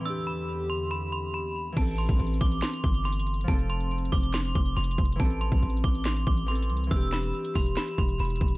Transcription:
Already playing: harp C4 A4
0.01 harp E3
0.05 analog synth pad E2 D3 G4, harp D4, synth bell E6
0.10 harp G4
0.27 synth bell B5
0.70 synth bell C6
0.91 synth bell B5
1.12 synth bell C6
1.34 synth bell B5
1.72 harp E3
1.77 808-style bass A1, harp C4, synth bell A5, kick, closed hi-hat, crash
1.81 harp A4
1.87 closed hi-hat
1.98 synth bell C6, closed hi-hat
2.09 808-style bass A1, kick, closed hi-hat
2.19 808-style bass A1, closed hi-hat
2.27 closed hi-hat
2.34 closed hi-hat
2.41 808-style bass A1, synth bell D6, kick, closed hi-hat
2.52 closed hi-hat
2.62 synth bell C6, snare, clap, closed hi-hat
2.74 closed hi-hat
2.84 808-style bass G1, synth bell D6, kick
2.94 closed hi-hat
3.05 synth bell C6, closed hi-hat
3.12 closed hi-hat
3.20 closed hi-hat
3.27 closed hi-hat
3.34 closed hi-hat
3.41 harp F3, closed hi-hat
3.48 808-style bass F1, harp C4, synth bell A5, kick, closed hi-hat
3.53 harp A4
3.59 closed hi-hat
3.70 synth bell C6, closed hi-hat
3.80 closed hi-hat
3.91 closed hi-hat
3.98 closed hi-hat
4.05 closed hi-hat
4.12 808-style bass F1, synth bell D6, kick, open hi-hat
4.23 closed hi-hat
4.34 synth bell C6, snare, clap, closed hi-hat
4.45 closed hi-hat
4.55 808-style bass F1, synth bell D6, kick
4.66 closed hi-hat
4.77 808-style bass F1, synth bell C6, closed hi-hat
4.84 closed hi-hat
4.91 closed hi-hat
4.98 808-style bass F1, kick, closed hi-hat
5.05 closed hi-hat
5.12 harp E3, closed hi-hat
5.20 808-style bass A1, harp C4, synth bell A5, kick, closed hi-hat
5.25 harp A4
5.30 closed hi-hat
5.41 synth bell C6, closed hi-hat
5.52 808-style bass A1, kick, closed hi-hat
5.63 808-style bass A1, closed hi-hat
5.70 closed hi-hat
5.77 closed hi-hat
5.84 808-style bass A1, synth bell D6, kick, closed hi-hat
5.95 closed hi-hat
6.05 synth bell C6, snare, clap, closed hi-hat
6.16 closed hi-hat
6.27 808-style bass A1, synth bell D6, kick
6.37 closed hi-hat
6.46 harp E3 C4, synth bell C6, closed hi-hat
6.51 harp A4
6.55 closed hi-hat
6.63 closed hi-hat
6.70 808-style bass C2, closed hi-hat
6.77 closed hi-hat
6.84 harp E3, closed hi-hat
6.91 808-style bass E1, harp D4, synth bell E6, kick, closed hi-hat
6.96 harp G4
7.02 closed hi-hat
7.12 synth bell B5, snare, clap, closed hi-hat
7.23 closed hi-hat
7.34 closed hi-hat
7.45 closed hi-hat
7.55 808-style bass E1, synth bell C6, kick, open hi-hat
7.66 closed hi-hat
7.77 synth bell B5, snare, clap, closed hi-hat
7.88 closed hi-hat
7.98 808-style bass E1, synth bell C6, kick
8.09 closed hi-hat
8.20 808-style bass E1, synth bell B5, closed hi-hat
8.25 closed hi-hat
8.30 closed hi-hat
8.36 closed hi-hat
8.41 808-style bass E1, kick, closed hi-hat
8.48 closed hi-hat

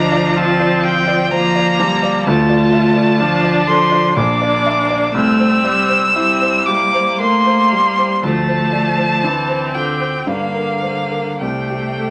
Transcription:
Already playing: grand piano D2 D5 D#5, cello F3, viola D4, violin A#5
0.12 grand piano D5
0.36 viola C4, grand piano F4, violin A5
0.60 grand piano D5
0.84 grand piano F4, violin G5
1.08 grand piano D5
1.31 cello F3, viola A#3, grand piano C5, violin A#5
1.56 grand piano D5
1.79 grand piano F3, cello G3
2.03 grand piano D5
2.25 grand piano D2, cello A3, viola F4, violin A5
2.50 grand piano D5
2.73 grand piano E5
2.96 grand piano D5
3.19 cello F3, viola D4, grand piano F4
3.44 grand piano D5
3.67 cello F3, grand piano A4, violin C6
3.92 grand piano D5
4.16 grand piano A#1, cello A#3, viola D4, violin D6
4.42 grand piano D5
4.66 grand piano E5
4.90 grand piano D5
5.14 grand piano C2, cello A3, viola C4, violin E6
5.40 grand piano C5
5.64 cello G3, grand piano D5
5.89 grand piano C5
6.15 cello G3, viola C4, grand piano E4
6.41 grand piano C5
6.66 viola A#3, grand piano G4, violin D6
6.94 grand piano C5
7.20 cello A3, grand piano A#4, violin C6
7.46 grand piano C5
7.72 grand piano G3, cello G3
7.98 grand piano C5
8.23 grand piano D2, cello F3, viola A3, violin A5
8.48 grand piano C5
8.73 grand piano D5
8.98 grand piano C5
9.23 cello E3, viola C4, grand piano D4
9.49 grand piano C5
9.74 cello D3, grand piano F4, violin G5
10.01 grand piano C5
10.27 grand piano G2, cello D3, viola A#3, violin F5
10.54 grand piano A#4
10.82 viola A#3, grand piano C5
11.11 grand piano A#4
11.40 grand piano C2, cello C3, viola A3, violin G5
11.70 grand piano G4
11.99 grand piano A4

